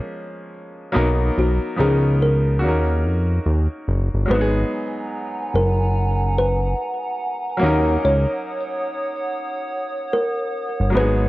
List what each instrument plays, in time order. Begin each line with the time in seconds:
Already playing: upright piano F3 G#3 A#3 C#4 G#4, kalimba A#4
0.92 analog synth bass B1, upright piano F#3 A#3 B3 D#4
0.96 upright piano A#4
1.38 analog synth bass B1, kalimba F#4
1.76 analog synth bass C#2, upright piano F3 B3 C#4 D#4
1.80 kalimba G#4, upright piano A#4
2.22 kalimba A#4
2.59 analog synth bass D#2, upright piano A#3 F#4
2.64 upright piano C#4 D#4
2.68 upright piano A#4
3.05 analog synth bass F2
3.46 analog synth bass D#2
3.88 analog synth bass F#1
4.14 analog synth bass G1
4.26 analog synth bass G#1, upright piano F#3 G#3, ambient pad F#5 G#5 A#5
4.30 upright piano B3 D#4, kalimba B4
4.34 upright piano F#4
4.41 upright piano G#4
5.54 analog synth bass F#1, kalimba A#4
6.38 kalimba B4
7.57 upright piano F#3 A#3, ambient pad C#5 D#6
7.62 analog synth bass D#2, upright piano C#4 D#4
7.66 upright piano A#4
8.04 analog synth bass C#2, kalimba C#5
10.13 kalimba A#4
10.80 analog synth bass G1
10.90 upright piano F#3 G#3, ambient pad G#5 A#5
10.95 analog synth bass G#1, upright piano B3 D#4, kalimba B4
10.99 upright piano G#4